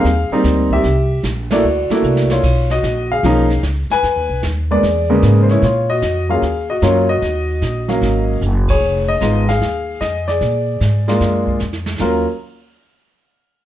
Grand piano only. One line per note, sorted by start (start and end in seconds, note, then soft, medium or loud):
0.00 0.42 G#4 medium
0.00 0.42 F5 loud
0.32 0.82 G3 medium
0.32 0.82 A#3 medium
0.32 0.83 C4 medium
0.32 0.83 D#4 medium
0.73 1.22 G4 medium
0.73 1.21 E5 loud
1.51 1.63 A3 medium
1.51 1.63 A#3 medium
1.51 1.64 D4 medium
1.51 1.64 E4 medium
1.51 1.89 F#4 medium
1.51 1.91 D5 medium
1.91 2.41 A3 medium
1.91 2.41 A#3 medium
1.91 2.41 D4 medium
1.91 2.42 E4 medium
1.91 2.29 F#4 medium
1.91 2.29 D5 medium
2.31 2.69 F4 medium
2.31 2.72 C#5 medium
2.71 3.09 F#4 medium
2.71 3.12 D#5 medium
3.12 3.61 G#4 medium
3.12 3.60 F5 loud
3.24 3.48 F3 medium
3.24 3.48 A#3 medium
3.24 3.48 C#4 medium
3.24 3.49 D#4 medium
3.92 4.41 B4 medium
3.92 4.40 G#5 loud
4.71 4.82 G#3 medium
4.71 4.82 A#3 medium
4.71 4.82 B3 medium
4.71 4.82 D4 medium
4.71 5.40 G#4 medium
4.71 5.46 D5 loud
5.10 5.60 C#3 medium
5.10 5.60 G#3 medium
5.10 5.60 A#3 medium
5.10 5.60 B3 medium
5.43 5.49 C5 medium
5.51 5.63 E4 medium
5.51 5.62 C#5 loud
5.64 5.89 F4 medium
5.64 5.88 C#5 medium
5.90 6.27 F#4 medium
5.90 6.26 D#5 loud
6.29 6.41 F#3 medium
6.29 6.41 A#3 medium
6.29 6.41 C#4 medium
6.29 6.41 F4 medium
6.29 6.67 G#4 medium
6.29 6.67 F5 medium
6.70 6.82 F#4 medium
6.70 6.82 D#5 medium
6.82 7.06 F#3 medium
6.82 7.06 A#3 medium
6.82 7.06 C#4 medium
6.82 7.07 F4 medium
6.82 7.10 C#5 medium
7.09 8.38 F#4 medium
7.09 8.37 D#5 medium
7.88 8.39 F#3 medium
7.88 8.39 A#3 medium
7.88 8.39 C#4 medium
7.88 8.39 F5 medium
8.70 9.45 G#4 medium
8.70 9.10 C#5 loud
9.08 9.49 D#5 loud
9.21 9.45 G#3 medium
9.21 9.45 B3 medium
9.21 9.45 D#4 medium
9.21 9.46 F4 medium
9.49 10.24 G#4 medium
9.49 10.03 F5 loud
10.01 10.28 D#5 medium
10.28 11.57 G#4 medium
10.28 11.56 D5 medium
11.08 11.58 G#3 medium
11.08 11.58 A#3 medium
11.08 11.58 D4 medium
11.08 11.58 F4 medium
12.00 12.24 F#3 medium
12.00 12.24 A#3 medium
12.00 12.24 C#4 medium
12.00 12.24 F4 medium
12.00 12.26 A#4 medium